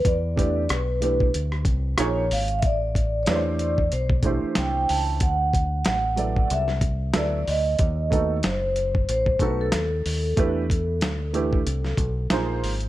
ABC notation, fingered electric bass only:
X:1
M:4/4
L:1/16
Q:"Swing 16ths" 1/4=93
K:Ador
V:1 name="Fingered electric bass" clef=bass
E,,4 B,,,4 D,,2 C,,2 _B,,,2 _A,,,2 | A,,,4 E,,4 B,,,3 z C,,2 ^C,,2 | D,,4 A,,,4 C,,4 D,,2 D,,2 | ^D,,4 F,,,4 A,,,2 B,,,2 D,,2 D,,2 |
E,,4 D,,4 C,,2 B,,,2 _B,,,2 ^G,,,2 |]